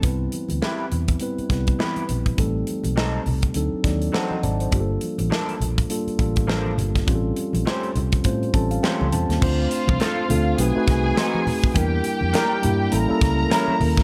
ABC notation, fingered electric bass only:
X:1
M:4/4
L:1/16
Q:"Swing 16ths" 1/4=102
K:Cmix
V:1 name="Fingered electric bass" clef=bass
C,,2 z D,, z2 E,,2 z2 C,,2 z2 B,,,2 | A,,,2 z =B,,,3 C,,2 D,, z _E,,2 z2 ^G,,,2 | G,,,2 z A,,, z2 B,,,2 z2 A,,,4 G,,,2 | A,,,2 z B,,, z2 ^B,,,2 A,,2 A,,,2 z ^C,, E,, _E,, |
D,,2 z C,, z2 D,,2 =B,,, z C,,2 z4 | E,,2 z F,, z2 G,,2 A,,, z ^C,,2 z2 _E,,2 |]